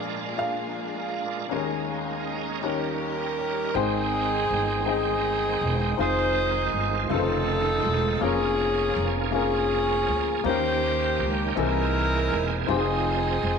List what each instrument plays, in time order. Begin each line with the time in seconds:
Already playing: upright piano A#1 A#2 D4 F4 G#4 A#4 D5, tonewheel organ G#3 D4 F4 A#4, string section A#3 D4 F4 G#4
0.37 upright piano D4 F4 G#4 A#4 D5, grand piano F5
1.49 upright piano D#2 D#3 C#4 D#4 G4 A#4 C#5, tonewheel organ G#3 C#4 D#4 A#4, string section C#4 D#4
1.57 upright piano G#4
2.62 upright piano D#2 D#3 C#4 D#4 G4 A#4 C#5, tonewheel organ F#3 C#4 D#4 A#4, saxophone section C#4 G4 A#4, string section G4
2.69 tonewheel organ G3
3.74 upright bass G#1, tonewheel organ D#3 G#3 C4 G5, upright piano G#3 C4 D#4 G#4 C5 G5, saxophone section G#4
3.78 saxophone section C4 D#4
4.50 upright bass G1
4.85 upright piano C4 D#4 G#4 D#5 G5, saxophone section G#4
4.90 saxophone section C4 D#4
5.61 upright bass E1
5.97 upright bass F1, tonewheel organ D#3 G#3 C4 E4, upright piano C4 D#4 F4 G#4 C5, saxophone section C5
6.01 saxophone section D#4 G#4
6.08 tonewheel organ F4
6.73 upright bass G1
7.09 upright bass F1, upright piano C#3 D#4 F4 A4 B4, tonewheel organ C#3 D#3 A3 F4, saxophone section C4 D#4 A4
7.19 upright piano C5
7.85 upright bass E1
8.21 upright bass F1, tonewheel organ F3 A#3 C#4 G4, upright piano A#3 C#4 F4 G#4 A#4, saxophone section C#4 G#4
8.28 tonewheel organ G#4
8.96 upright bass F1
9.31 upright piano A#3 C#4 F4 G#4 A#4, saxophone section C#4 G#4
10.08 upright bass D2
10.44 upright bass D#2, tonewheel organ D#3 A#3 C#4 G4, upright piano D#3 A#3 C#4 D#4 G4 A#4, saxophone section C5
10.48 saxophone section G4
11.19 upright bass C#2
11.55 upright bass C2, upright piano C3 E3 C4 G#4 A#4 D#5, tonewheel organ E3 A#3 C4 G#4, saxophone section E4 A#4
11.59 saxophone section D#4
12.32 upright bass E1
12.66 upright bass F1, upright piano C4 D#4 F4 G#4 C5, tonewheel organ C4 D#4 G#4, saxophone section G#4
12.71 tonewheel organ F3, saxophone section C4 D#4
13.43 upright bass F1